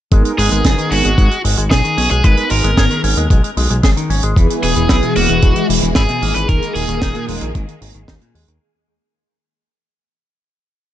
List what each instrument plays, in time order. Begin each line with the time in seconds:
0.11 analog synth bass G#1, clean electric guitar G#3, analog polysynth B3 D#4 G#4 A#4, kick, closed hi-hat
0.25 clean electric guitar G#3, closed hi-hat
0.38 analog synth bass G#1, clean electric guitar G#3, lead electric guitar G#4, open hi-hat
0.52 analog synth bass G#1, clean electric guitar G#3, closed hi-hat
0.64 analog synth bass F#1, clean electric guitar G#4, kick, snare, closed hi-hat
0.78 clean electric guitar D#3, closed hi-hat
0.91 analog synth bass G#1, analog polysynth B3 D#4 G#4 A#4, clean electric guitar C#4, lead electric guitar F#4, open hi-hat
1.05 analog synth bass G#1, clean electric guitar G#3, closed hi-hat
1.18 analog synth bass G#1, clean electric guitar G#3, kick, closed hi-hat
1.31 clean electric guitar G#3, closed hi-hat
1.44 analog synth bass G#1, clean electric guitar G#3, open hi-hat
1.58 analog synth bass G#1, clean electric guitar G#3, closed hi-hat
1.70 analog synth bass B1, lead electric guitar G#4, clean electric guitar G#4, kick, snare, closed hi-hat
1.84 clean electric guitar D#3, closed hi-hat
1.98 analog synth bass B1, clean electric guitar C#4, open hi-hat
2.11 analog synth bass B1, clean electric guitar G#3, lead electric guitar G#4, closed hi-hat
2.24 analog synth bass G#1, clean electric guitar G#3, analog polysynth B3 D#4 G#4 A#4, lead electric guitar B4, kick, closed hi-hat
2.37 clean electric guitar G#3, closed hi-hat
2.50 analog synth bass G#1, clean electric guitar G#3, lead electric guitar A#4, open hi-hat
2.64 analog synth bass G#1, clean electric guitar G#3, closed hi-hat
2.77 analog synth bass G#1, clean electric guitar G#4, kick, snare, closed hi-hat
2.90 clean electric guitar D#3, closed hi-hat
3.04 analog synth bass G#1, analog polysynth B3 D#4 G#4 A#4, clean electric guitar C#4, open hi-hat
3.17 analog synth bass D#2, clean electric guitar G#3, closed hi-hat
3.30 analog synth bass B1, clean electric guitar G#3, kick, closed hi-hat
3.44 clean electric guitar G#3, closed hi-hat
3.57 analog synth bass B1, clean electric guitar G#3, open hi-hat
3.70 analog synth bass B1, clean electric guitar G#3, closed hi-hat
3.83 analog synth bass G#1, clean electric guitar G#4, kick, snare, closed hi-hat
3.97 clean electric guitar D#3, closed hi-hat
4.10 analog synth bass G#1, clean electric guitar C#4, open hi-hat
4.23 analog synth bass G#1, clean electric guitar G#3, closed hi-hat
4.36 analog synth bass E1, clean electric guitar E3, string machine E3 G#3 G#4, analog polysynth B3 E4 G#4 B4, kick, closed hi-hat
4.50 clean electric guitar E3, closed hi-hat
4.63 analog synth bass E1, clean electric guitar E3, lead electric guitar G#4, open hi-hat
4.76 analog synth bass E1, clean electric guitar E3, closed hi-hat
4.89 analog synth bass B1, clean electric guitar E4, kick, snare, closed hi-hat
5.03 clean electric guitar B2, closed hi-hat
5.16 analog synth bass E1, clean electric guitar A#3, analog polysynth B3 E4 G#4 B4, lead electric guitar F#4, open hi-hat
5.29 analog synth bass E1, clean electric guitar E3, closed hi-hat
5.42 analog synth bass E1, clean electric guitar E3, kick, closed hi-hat
5.56 clean electric guitar E3, closed hi-hat
5.69 analog synth bass E1, clean electric guitar E3, open hi-hat
5.82 analog synth bass E1, clean electric guitar E3, closed hi-hat
5.95 analog synth bass G#1, clean electric guitar E4, lead electric guitar G#4, kick, snare, closed hi-hat
6.09 clean electric guitar B2, closed hi-hat
6.22 analog synth bass G#1, clean electric guitar A#3, open hi-hat
6.35 analog synth bass G#1, clean electric guitar E3, lead electric guitar B4, closed hi-hat
6.48 analog synth bass D#1, clean electric guitar D#3, string machine D#3 A#3, analog polysynth A#3 D#4 G#4 A#4, lead electric guitar A#4, kick, closed hi-hat
6.62 clean electric guitar D#3, closed hi-hat
6.75 analog synth bass D#1, clean electric guitar D#3, lead electric guitar G#4, open hi-hat
6.88 analog synth bass D#1, clean electric guitar D#3, closed hi-hat
7.02 analog synth bass D#1, clean electric guitar D#4, kick, snare, closed hi-hat
7.15 clean electric guitar A#2, closed hi-hat
7.28 analog synth bass D#1, clean electric guitar G#3, analog polysynth A#3 D#4 G#4 A#4, open hi-hat
7.41 analog synth bass A#1, clean electric guitar D#3, closed hi-hat
7.55 analog synth bass G#1, clean electric guitar D#3, kick, closed hi-hat
7.68 clean electric guitar D#3, closed hi-hat
7.81 analog synth bass G#1, clean electric guitar D#3, open hi-hat
7.94 analog synth bass G#1, clean electric guitar D#3, closed hi-hat
8.08 analog synth bass D#2, clean electric guitar D#4, kick, snare, closed hi-hat
8.21 clean electric guitar A#2, closed hi-hat
8.35 analog synth bass D#2, clean electric guitar G#3, open hi-hat
8.48 analog synth bass D#2, clean electric guitar D#3, closed hi-hat